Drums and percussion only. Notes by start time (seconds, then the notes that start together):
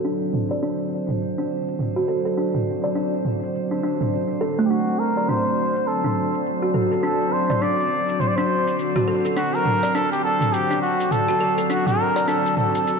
0.05 shaker
0.23 shaker
0.34 mid tom
0.51 shaker
0.63 shaker
0.81 shaker
1.09 mid tom, shaker
1.22 shaker
1.39 shaker
1.68 shaker
1.79 mid tom, shaker
1.97 shaker
2.26 shaker
2.38 shaker
2.55 mid tom, shaker
2.85 shaker
2.97 shaker
3.14 shaker
3.25 mid tom
3.43 shaker
3.55 shaker
3.73 shaker
4.01 mid tom, shaker
4.13 shaker
4.31 shaker
4.60 shaker
4.72 shaker
4.89 shaker
5.18 shaker
5.29 mid tom, shaker
5.47 shaker
5.76 shaker
5.88 shaker
6.04 mid tom, shaker
6.34 shaker
6.46 shaker
6.63 shaker
6.74 mid tom
6.92 shaker
7.04 shaker
7.22 shaker
7.50 mid tom, shaker
7.63 shaker
7.80 shaker
8.09 shaker
8.20 mid tom, shaker
8.38 shaker
8.67 shaker
8.79 shaker
8.96 mid tom, shaker
9.25 shaker
9.37 shaker
9.55 shaker
9.66 mid tom
9.84 shaker
9.96 shaker
10.13 shaker
10.41 mid tom, shaker
10.54 shaker
10.71 shaker
11.00 shaker
11.11 mid tom, shaker
11.29 shaker
11.58 shaker
11.70 shaker
11.87 mid tom, shaker
12.17 shaker
12.29 shaker
12.46 shaker
12.57 mid tom
12.75 shaker
12.87 shaker